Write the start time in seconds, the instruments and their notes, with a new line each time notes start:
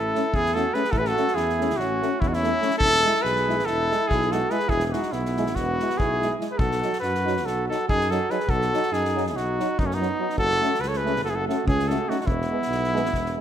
Already playing: tuba A1, flugelhorn E4, trumpet A4
0.14 euphonium A3, trombone C#4, snare
0.33 tuba E2, flugelhorn E4, trumpet G#4, kick
0.46 snare
0.54 euphonium A3, trombone C#4, flugelhorn F#4, trumpet A4, snare
0.74 euphonium A3, trombone C#4, flugelhorn G#4, trumpet B4, snare
0.84 snare
0.91 tuba A1, flugelhorn E4, trumpet A4, kick
0.98 flugelhorn G#4, trumpet B4
1.05 trumpet A4, snare
1.09 flugelhorn F#4
1.15 euphonium A3, trombone C#4, snare
1.27 snare
1.34 tuba E2, flugelhorn E4, trumpet G#4, snare
1.49 snare
1.58 euphonium A3, trombone C#4, snare
1.70 snare
1.77 tuba A1, flugelhorn C#4, trumpet F#4, snare
2.01 euphonium A3, trombone C#4, snare
2.20 tuba E2, flugelhorn C#4, trumpet E4, kick
2.28 flugelhorn D#4, trumpet F#4
2.33 flugelhorn C#4, trumpet E4, snare
2.42 euphonium A3, trombone C#4, snare
2.60 euphonium A3, trombone C#4, snare
2.70 snare
2.78 tuba E1, flugelhorn E4, trumpet A4, kick
2.93 snare
3.03 euphonium G#3, trombone E4, snare
3.15 snare
3.22 tuba B1, flugelhorn G#4, trumpet B4, snare
3.36 snare
3.47 euphonium G#3, trombone E4, snare
3.59 snare
3.65 tuba E1, flugelhorn E4, trumpet A4, snare
3.90 euphonium G#3, trombone E4, snare
4.08 tuba B1, flugelhorn E4, trumpet G#4, kick
4.21 snare
4.32 euphonium G#3, trombone E4, flugelhorn F#4, trumpet A4, snare
4.50 euphonium G#3, trombone E4, flugelhorn G#4, trumpet B4, snare
4.59 snare
4.68 tuba E1, flugelhorn E4, trumpet G#4, kick
4.80 snare
4.86 flugelhorn E4, trumpet G#4
4.92 euphonium G#3, flugelhorn D#4, trombone E4, trumpet F#4, snare
5.02 snare
5.12 tuba B1, flugelhorn B3, trumpet E4, snare
5.25 snare
5.36 euphonium G#3, trombone E4, snare
5.46 snare
5.55 tuba E1, flugelhorn B3, trumpet F#4, kick, snare
5.80 euphonium G#3, trombone E4, snare
5.90 snare
5.97 tuba B1, flugelhorn E4, trumpet G#4, kick
6.21 euphonium G#3, trombone E4, snare
6.40 euphonium G#3, trombone E4, snare
6.51 flugelhorn G#4, trumpet B4
6.58 tuba B1, flugelhorn F#4, trumpet A4, kick
6.71 snare
6.82 euphonium F#3, trombone D#4, snare
6.93 snare
7.00 tuba F#2, flugelhorn F#4, trumpet B4, snare
7.14 snare
7.25 euphonium F#3, trombone D#4, snare
7.36 snare
7.45 tuba B1, flugelhorn F#4, trumpet A4, snare
7.68 euphonium F#3, trombone D#4, flugelhorn F#4, trumpet A4, snare
7.89 tuba F#2, flugelhorn D#4, trumpet G#4, kick
8.01 snare
8.10 euphonium F#3, trombone D#4, flugelhorn F#4, trumpet A4, snare
8.30 euphonium F#3, trombone D#4, flugelhorn G#4, trumpet B4, snare
8.40 snare
8.48 tuba B1, flugelhorn F#4, trumpet A4, kick
8.61 snare
8.72 euphonium F#3, trombone D#4, snare
8.83 snare
8.92 tuba F#2, flugelhorn D#4, trumpet G#4, snare
9.05 snare
9.14 euphonium F#3, trombone D#4, snare
9.26 flugelhorn E4, trumpet G#4, snare
9.36 tuba B1, flugelhorn D#4, trumpet F#4, snare
9.59 euphonium F#3, trombone D#4, snare
9.79 tuba F#2, flugelhorn B3, trumpet D#4, kick
9.86 flugelhorn A3, trumpet C#4
9.91 flugelhorn B3, trumpet D#4, snare
9.99 euphonium F#3, trombone D#4, snare
10.19 euphonium F#3, trombone D#4
10.30 snare
10.37 tuba F#1, flugelhorn F#4, trumpet A4, kick
10.51 snare
10.60 euphonium A3, trombone C#4, snare
10.74 snare
10.80 tuba C#2, flugelhorn F#4, trumpet B4, snare
10.88 flugelhorn A4, trumpet C#5
10.93 trumpet B4, snare
10.98 flugelhorn G#4
11.04 euphonium A3, trombone C#4, snare
11.16 snare
11.23 tuba F#1, flugelhorn F#4, trumpet A4, snare
11.29 flugelhorn E4, trumpet G#4
11.35 flugelhorn F#4, trumpet A4
11.47 euphonium A3, trombone C#4, flugelhorn F#4, trumpet A4, snare
11.66 tuba C#2, flugelhorn C#4, trumpet G#4, kick
11.79 snare
11.88 euphonium A3, trombone C#4, flugelhorn F#4, trumpet A4, snare
12.08 euphonium A3, trombone C#4, flugelhorn D#4, trumpet F#4, snare
12.19 flugelhorn D#4, trumpet F#4, snare
12.25 tuba E1, flugelhorn B3, trumpet E4, kick
12.42 snare
12.50 euphonium G#3, trombone B3
12.62 snare
12.68 tuba B1, snare
12.84 snare
12.93 euphonium G#3, trombone B3, snare
13.05 snare
13.12 tuba E1, kick, snare
13.26 snare
13.37 euphonium G#3